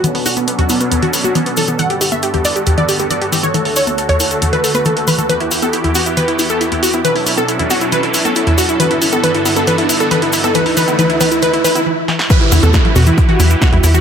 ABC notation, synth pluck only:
X:1
M:4/4
L:1/16
Q:1/4=137
K:Edor
V:1 name="Synth pluck"
B, B, F B, B, F B, B, B, F B, F B, B, A B, | f G G e G G d G G d G G d G G c | A A c A A c A A A B A B A A B A | B E E A E E F E B E E A E E F E |
B E E A E E F E B E E A E E F E | B E E A B E E A B E E A B E E A | B E B E B E B E B E B E z4 | B E E A E E F E E F E E F E E F |]